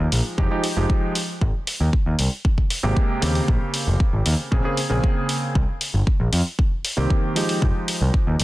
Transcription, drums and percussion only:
0.12 open hi-hat loud
0.38 kick loud
0.64 open hi-hat loud
0.90 kick loud
1.15 open hi-hat loud
1.41 kick loud
1.67 open hi-hat loud
1.93 kick loud
2.19 open hi-hat loud
2.45 kick loud
2.58 kick medium
2.70 open hi-hat medium
2.97 kick loud
3.22 open hi-hat loud
3.35 open hi-hat medium
3.48 kick loud
3.74 open hi-hat loud
4.00 kick loud
4.26 open hi-hat medium
4.52 kick loud
4.77 open hi-hat medium
5.04 kick loud
5.29 open hi-hat loud
5.55 kick loud
5.81 open hi-hat medium
6.07 kick loud
6.33 open hi-hat medium
6.59 kick loud
6.85 open hi-hat loud
7.10 kick loud
7.36 open hi-hat medium
7.49 open hi-hat medium
7.62 kick loud
7.88 open hi-hat medium
8.14 kick loud
8.40 open hi-hat medium

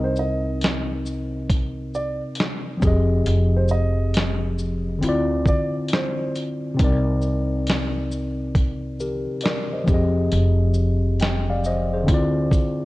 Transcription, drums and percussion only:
0.16 shaker soft
0.61 snare loud
0.61 closed hi-hat medium
1.06 shaker soft
1.50 kick medium
1.50 closed hi-hat medium
1.94 shaker soft
2.35 closed hi-hat medium
2.40 snare medium
2.82 kick loud
2.82 closed hi-hat soft
2.82 shaker soft
3.26 closed hi-hat medium
3.69 shaker soft
4.14 snare loud
4.14 closed hi-hat medium
4.59 shaker medium
5.03 closed hi-hat medium
5.46 kick medium
5.46 shaker soft
5.88 closed hi-hat medium
5.93 snare loud
6.35 closed hi-hat soft
6.35 shaker soft
6.79 kick loud
6.79 closed hi-hat medium
7.22 shaker soft
7.67 snare loud
7.67 closed hi-hat medium
8.12 shaker soft
8.55 kick medium
8.55 closed hi-hat medium
9.00 shaker soft
9.41 closed hi-hat medium
9.46 snare loud
9.88 kick loud
9.88 closed hi-hat soft
9.88 shaker soft
10.32 closed hi-hat medium
10.74 shaker soft
11.20 snare medium
11.20 closed hi-hat medium
11.64 shaker medium
12.08 kick medium
12.08 closed hi-hat medium
12.51 kick medium
12.51 closed hi-hat soft
12.51 shaker soft

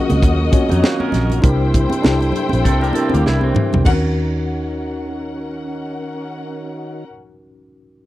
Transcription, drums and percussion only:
0.10 closed hi-hat soft
0.10 high conga medium
0.22 kick medium
0.22 closed hi-hat medium
0.22 muted conga soft
0.52 kick loud
0.52 closed hi-hat medium
0.52 high conga medium
0.69 closed hi-hat medium
0.69 high conga medium
0.84 snare loud
1.00 muted conga soft
1.00 high conga medium
1.12 snare soft
1.12 closed hi-hat medium
1.12 high conga medium
1.12 low conga medium
1.30 closed hi-hat medium
1.30 low conga medium
1.42 kick loud
1.42 closed hi-hat medium
1.42 muted conga soft
1.74 kick medium
1.74 closed hi-hat medium
1.90 closed hi-hat medium
1.90 high conga medium
2.04 snare loud
2.04 muted conga soft
2.21 closed hi-hat soft
2.21 muted conga soft
2.32 closed hi-hat medium
2.32 low conga medium
2.49 closed hi-hat soft
2.49 high conga medium
2.65 kick medium
2.65 closed hi-hat medium
2.81 closed hi-hat soft
2.81 muted conga soft
2.93 closed hi-hat medium
2.93 high conga medium
3.10 high conga medium
3.14 closed hi-hat medium
3.26 snare medium
3.41 high conga medium
3.55 mid tom medium
3.55 high conga medium
3.55 low conga medium
3.73 floor tom medium
3.73 low conga medium
3.85 kick medium
3.85 crash medium
3.85 high conga medium

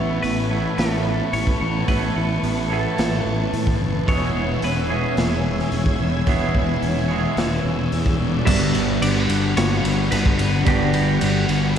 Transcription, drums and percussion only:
0.24 open hi-hat medium
0.78 snare loud
0.78 open hi-hat medium
1.33 open hi-hat medium
1.47 kick medium
1.88 kick medium
1.88 open hi-hat soft
2.44 open hi-hat soft
2.98 snare loud
2.98 open hi-hat medium
3.53 open hi-hat medium
3.67 kick medium
4.08 kick loud
4.08 open hi-hat soft
4.62 open hi-hat medium
5.17 snare loud
5.17 open hi-hat medium
5.59 snare soft
5.72 open hi-hat medium
5.86 kick medium
6.27 kick loud
6.27 open hi-hat soft
6.55 kick medium
6.83 open hi-hat soft
7.37 snare loud
7.37 open hi-hat medium
7.92 open hi-hat soft
8.06 kick medium
8.47 kick loud
8.47 crash loud
8.75 ride medium
9.02 ride loud
9.29 ride medium
9.57 snare loud
9.57 ride loud
9.85 ride medium
10.12 ride loud
10.26 kick medium
10.39 ride medium
10.66 kick loud
10.66 ride loud
10.94 ride medium
11.21 ride loud
11.49 ride medium

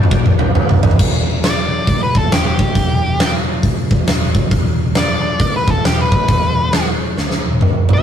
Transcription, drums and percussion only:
0.03 mid tom medium
0.11 kick loud
0.26 mid tom medium
0.39 mid tom medium
0.55 mid tom loud
0.69 floor tom medium
0.83 floor tom loud
0.91 floor tom medium
0.99 kick loud
0.99 crash loud
1.43 snare loud
1.43 open hi-hat soft
1.87 kick loud
1.87 open hi-hat medium
2.15 kick loud
2.32 snare loud
2.32 open hi-hat medium
2.59 kick loud
2.75 kick loud
2.75 open hi-hat medium
3.20 snare loud
3.20 open hi-hat medium
3.63 kick loud
3.63 open hi-hat medium
3.91 kick loud
4.07 snare loud
4.07 open hi-hat medium
4.35 kick loud
4.51 kick loud
4.51 open hi-hat medium
4.95 snare loud
4.95 open hi-hat medium
5.40 kick loud
5.40 open hi-hat medium
5.68 kick loud
5.85 snare loud
5.85 open hi-hat medium
6.12 kick loud
6.29 kick loud
6.29 open hi-hat medium
6.73 snare loud
6.73 open hi-hat medium
7.18 snare medium
7.31 snare medium
7.53 high tom medium
7.61 mid tom medium
7.89 floor tom loud
7.97 floor tom medium

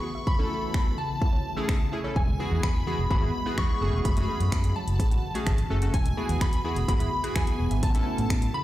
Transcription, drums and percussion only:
0.27 kick loud
0.74 finger snap loud
0.74 kick loud
1.22 kick loud
1.69 finger snap loud
1.69 kick loud
2.16 kick loud
2.63 finger snap loud
2.63 kick loud
3.11 kick loud
3.58 finger snap loud
3.58 kick loud
4.05 kick loud
4.05 closed hi-hat medium
4.17 closed hi-hat medium
4.40 closed hi-hat soft
4.52 finger snap loud
4.52 kick loud
4.52 closed hi-hat medium
4.64 closed hi-hat medium
4.88 closed hi-hat soft
4.99 kick loud
4.99 closed hi-hat medium
5.12 closed hi-hat soft
5.35 closed hi-hat medium
5.47 finger snap loud
5.47 kick loud
5.47 closed hi-hat medium
5.58 closed hi-hat medium
5.82 closed hi-hat medium
5.94 kick loud
5.94 closed hi-hat medium
6.06 closed hi-hat medium
6.29 closed hi-hat soft
6.41 finger snap loud
6.41 kick loud
6.41 closed hi-hat medium
6.53 closed hi-hat medium
6.76 closed hi-hat medium
6.88 kick loud
6.88 closed hi-hat medium
7.00 closed hi-hat soft
7.24 closed hi-hat medium
7.36 finger snap loud
7.36 kick loud
7.36 closed hi-hat medium
7.47 closed hi-hat medium
7.71 closed hi-hat soft
7.83 kick loud
7.83 closed hi-hat medium
7.95 closed hi-hat medium
8.18 closed hi-hat medium
8.30 finger snap loud
8.30 kick loud
8.30 closed hi-hat medium
8.42 closed hi-hat medium

